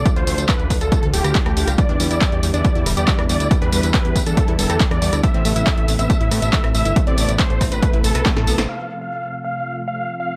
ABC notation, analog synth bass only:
X:1
M:4/4
L:1/16
Q:1/4=139
K:Am
V:1 name="Analog synth bass" clef=bass
z D,, D,, D,, z D,, D,, D,, z D,, D,,, D,, z D,, D,, C,, | z E,, E,, E,, z E,, E,, E,, z E,, E,,, E,, z E,, E,, D,, | z E,, E,, E,, z E,, E,, E,, z E,, E,,, E,, z E,, E,, D,, | z A,,, A,,, A,,, z A,,, A,,, A,,, z A,,, A,, A,,, z A,,, A,,, G,,, |
z A,,, A,,, A,,, z A,,, A,,, A,,, z A,,, A,,, B,,, z A,, B,,, A,,, | z16 |]